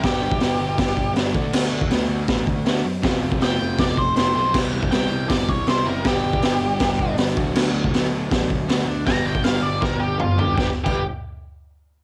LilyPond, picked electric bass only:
\new Staff \with { instrumentName = "Picked electric bass" } { \clef bass \time 4/4 \key g \major \tempo 4 = 159 g,,8 g,,8 g,,8 g,,8 g,,4 g,,8 d,8 | d,8 d,8 d,8 d,8 a,,8 d,8 d,8 fis,8 | f,,8 f,,8 f,,8 f,,8 f,,4 f,,8 b,,8 | c,8 c,8 c,8 c,8 g,,8 c,8 c,8 fis,,8 |
g,,8 g,,8 g,,8 g,,8 g,,4 g,,8 d,8 | d,8 d,8 d,8 d,8 a,,8 d,8 d,8 d,8 | g,,8 g,,8 g,,8 g,,8 g,,4 g,,8 g,,8 | g,,16 r8 g,,8 r2 r8. | }